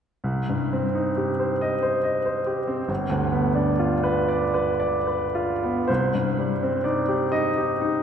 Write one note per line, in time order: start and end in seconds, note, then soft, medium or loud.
0.24 2.86 C2 soft
0.49 0.86 G2 soft
0.73 1.09 C4 soft
0.95 1.31 D#4 soft
1.17 1.53 G4 soft
1.40 1.74 C5 soft
1.61 1.96 D#5 soft
1.82 2.17 C5 soft
2.04 2.38 D#5 soft
2.26 2.60 C5 soft
2.47 2.81 G4 soft
2.67 2.89 C4 soft
2.88 5.84 G1 soft
3.10 3.47 D2 soft
3.32 3.70 B3 soft
3.55 3.94 D4 soft
3.79 4.19 F4 soft
4.03 4.43 B4 soft
4.28 4.69 D5 soft
4.54 4.96 B4 soft
4.80 5.23 D5 soft
5.07 5.52 B4 soft
5.35 5.79 F4 soft
5.64 5.89 B3 soft
5.88 8.03 C2 soft
5.88 6.85 C5 soft
6.14 6.53 G2 soft
6.39 6.77 G3 soft
6.63 7.01 C4 soft
6.84 7.24 D#4 soft
6.84 7.33 D5 soft
7.09 7.48 G4 soft
7.32 7.73 D#4 soft
7.32 8.03 D#5 medium
7.58 7.97 G4 soft
7.81 8.03 D#4 soft